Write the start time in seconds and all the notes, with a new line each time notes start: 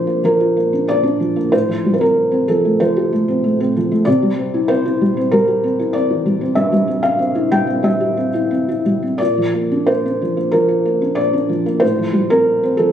Already playing: A#2 F3 A#3 D4 C5 D5
0.07 A#3
0.24 F3 A#4
0.40 F4
0.57 A#3
0.73 D4
0.88 A#3 D5
1.03 D4
1.20 F3
1.36 A#3
1.52 A2 C5
1.68 F3
1.85 G3
1.94 C5
2.01 C4 A#4
2.32 C4
2.48 F3 A4
2.65 A3
2.80 F3 C5
2.96 G4
3.12 A3
3.28 C4
3.44 A3
3.60 C4
3.76 F3
3.92 A3
4.05 C3 D5
4.22 G3
4.38 C4
4.54 E4
4.68 C4 C5
4.85 E4
5.01 G3
5.17 C4
5.31 G3 A#4
5.48 G4
5.64 C4
5.79 E4
5.93 C4 D5
6.10 E3
6.26 G3
6.41 C4
6.55 G2 E5
6.72 G3
6.87 C4
7.03 D4 F5
7.19 C4
7.35 E4
7.51 G3 G5
7.67 C4
7.83 G3 E5
8.00 G4
8.17 C4
8.34 E4
8.51 C4
8.69 E4
8.85 G3
9.02 C4
9.18 A#2 D5
9.37 F3
9.54 A#3
9.71 D4
9.87 A#3 C5
10.05 D4
10.22 F3
10.37 A#3
10.52 F3 A#4
10.68 F4
10.85 A#3
11.02 D4
11.15 A#3 D5
11.33 D4
11.49 F3
11.66 A#3
11.80 A2 C5
11.99 F3
12.13 G3
12.30 C4 A#4
12.63 C4
12.77 F3 A4